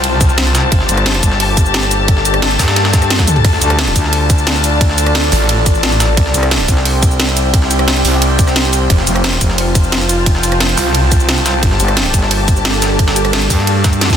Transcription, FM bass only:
0.89 G1
1.23 G1
2.59 G2
3.62 D2
3.96 D2
6.34 C2
6.68 C2
8.05 C2
9.07 F1
9.41 F1
11.80 G1
12.14 G1
13.50 G2

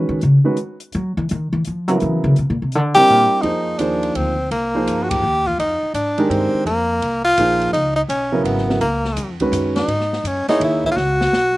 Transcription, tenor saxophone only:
2.95 G4
3.42 D#4
3.78 D4
4.16 C4
4.51 A#3
5.03 F#4
5.10 G4
5.47 F4
5.60 D#4
5.95 D4
6.30 C4
6.66 A#3
7.25 F4
7.73 D#4
7.96 D#4
8.09 C#4
8.45 B3
8.81 A#3
9.76 D#4
10.27 C#4
10.49 D#4
10.64 E4
10.86 E4
10.91 F4
10.97 F#4

